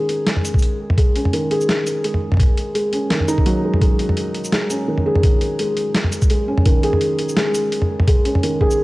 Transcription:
0.00 1.33 D#3 medium
0.00 0.27 G#3 medium
0.00 1.16 C#4 medium
0.00 1.51 G#4 loud
0.09 closed hi-hat medium
0.27 0.44 G#3 medium
0.27 snare loud
0.27 closed hi-hat medium
0.36 mid tom medium
0.45 closed hi-hat medium
0.45 shaker medium
0.54 kick loud
0.59 closed hi-hat medium
0.59 shaker soft
0.90 mid tom medium
0.98 1.15 G#3 medium
0.98 kick loud
0.98 closed hi-hat medium
1.16 1.32 C#4 medium
1.16 closed hi-hat medium
1.25 mid tom medium
1.33 1.49 D#3 medium
1.33 closed hi-hat medium
1.51 1.68 G#4 loud
1.51 closed hi-hat medium
1.61 shaker soft
1.69 snare loud
1.69 closed hi-hat medium
1.87 closed hi-hat medium
1.87 shaker medium
2.04 2.21 G#3 medium
2.04 closed hi-hat medium
2.14 mid tom medium
2.32 mid tom medium
2.34 mid tom medium
2.37 kick loud
2.37 closed hi-hat medium
2.37 mid tom soft
2.40 mid tom soft
2.43 mid tom soft
2.46 mid tom soft
2.57 closed hi-hat medium
2.75 2.92 G#3 medium
2.75 closed hi-hat medium
2.93 3.09 C#4 medium
2.93 closed hi-hat medium
3.10 3.27 D#3 medium
3.10 snare loud
3.10 closed hi-hat medium
3.20 mid tom medium
3.28 3.45 D#4 loud
3.28 closed hi-hat medium
3.28 shaker medium
3.38 kick loud
3.46 3.62 F#3 loud
3.46 closed hi-hat medium
3.64 3.80 G#3 medium
3.74 mid tom medium
3.81 3.99 G#3 medium
3.81 kick loud
3.81 closed hi-hat medium
3.99 closed hi-hat medium
4.09 mid tom medium
4.17 closed hi-hat medium
4.34 closed hi-hat medium
4.44 shaker soft
4.52 4.70 G#3 medium
4.52 snare loud
4.52 closed hi-hat medium
4.70 4.87 C#4 medium
4.70 closed hi-hat medium
4.70 shaker medium
4.88 5.04 D#3 medium
4.98 mid tom soft
5.06 5.23 G#4 medium
5.15 mid tom medium
5.23 kick loud
5.23 closed hi-hat medium
5.41 closed hi-hat medium
5.59 5.76 G#3 medium
5.59 closed hi-hat medium
5.77 closed hi-hat medium
5.95 snare loud
5.95 closed hi-hat medium
6.04 mid tom medium
6.12 closed hi-hat medium
6.12 shaker medium
6.22 kick loud
6.22 shaker soft
6.30 6.47 G#3 medium
6.30 closed hi-hat medium
6.48 6.64 C#4 medium
6.58 mid tom medium
6.66 6.82 D#3 medium
6.66 kick loud
6.66 closed hi-hat medium
6.83 7.00 G#4 loud
6.83 closed hi-hat medium
6.93 mid tom medium
7.01 closed hi-hat medium
7.19 closed hi-hat medium
7.29 shaker soft
7.37 7.54 G#3 medium
7.37 snare loud
7.37 closed hi-hat medium
7.54 closed hi-hat medium
7.54 shaker medium
7.72 closed hi-hat medium
7.82 mid tom medium
8.00 mid tom medium
8.08 8.25 G#3 medium
8.08 kick loud
8.08 closed hi-hat medium
8.25 8.42 C#4 medium
8.25 closed hi-hat medium
8.35 mid tom medium
8.43 8.59 D#3 medium
8.43 closed hi-hat medium
8.61 8.78 G#4 loud
8.61 kick medium
8.71 shaker soft

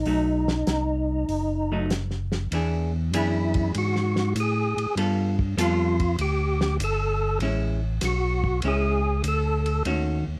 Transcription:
0.00 1.86 D#4 medium
0.06 0.64 B1 medium
0.06 0.44 F#3 soft
0.06 0.45 A3 soft
0.06 0.45 D#4 medium
0.06 open hi-hat soft
0.48 snare medium
0.67 1.25 C2 medium
0.67 snare medium
0.67 closed hi-hat soft
1.29 2.48 F#1 medium
1.29 open hi-hat soft
1.72 1.89 F#3 medium
1.72 1.89 A3 soft
1.72 1.90 D#4 medium
1.90 snare medium
1.90 closed hi-hat soft
2.11 snare soft
2.32 snare soft
2.51 3.11 E2 medium
2.51 2.90 E3 soft
2.51 2.90 B3 soft
2.51 2.91 D4 soft
2.51 2.91 G#4 medium
2.51 ride medium
3.12 3.72 F#2 medium
3.12 4.08 E3 medium
3.12 4.09 B3 medium
3.12 4.09 D4 medium
3.12 4.09 G#4 medium
3.12 hi-hat pedal medium
3.12 ride medium
3.16 3.72 E4 medium
3.54 kick medium
3.54 ride soft
3.75 4.34 G#2 medium
3.75 4.34 F#4 medium
3.75 ride medium
3.96 snare soft
4.16 snare soft
4.35 4.74 A2 medium
4.35 hi-hat pedal medium
4.35 ride medium
4.40 4.95 G#4 medium
4.77 4.87 A2 soft
4.77 ride soft
4.95 5.55 G2 medium
4.95 5.35 G3 medium
4.95 5.35 B3 medium
4.95 5.35 F4 medium
4.95 5.35 A4 medium
4.95 ride medium
5.39 kick soft
5.57 6.17 F2 medium
5.57 5.95 G3 medium
5.57 5.95 B3 medium
5.57 5.96 F4 medium
5.57 6.16 F4 medium
5.57 5.96 A4 medium
5.57 hi-hat pedal medium
5.57 ride medium
6.00 kick soft
6.00 ride soft
6.19 6.78 D2 medium
6.19 6.77 G4 medium
6.19 ride medium
6.61 snare medium
6.79 7.39 G1 medium
6.79 hi-hat pedal medium
6.79 ride medium
6.84 7.39 A4 medium
7.40 8.00 A1 medium
7.40 7.79 G#3 soft
7.40 7.79 C#4 medium
7.40 7.79 E4 medium
7.40 ride medium
8.01 8.61 B1 medium
8.01 8.61 F#4 medium
8.01 snare soft
8.01 hi-hat pedal medium
8.01 ride medium
8.44 kick medium
8.62 9.22 C#2 medium
8.62 9.01 G#3 medium
8.62 9.01 C#4 medium
8.62 9.02 E4 medium
8.62 ride medium
8.68 9.22 G#4 medium
9.23 9.83 D2 medium
9.23 hi-hat pedal medium
9.23 ride medium
9.28 9.83 A4 medium
9.66 ride soft
9.85 10.24 D#2 medium
9.85 10.23 D#3 soft
9.85 10.23 A3 soft
9.85 10.23 C#4 medium
9.85 10.23 F#4 medium
9.85 ride medium
10.27 10.37 D#2 soft

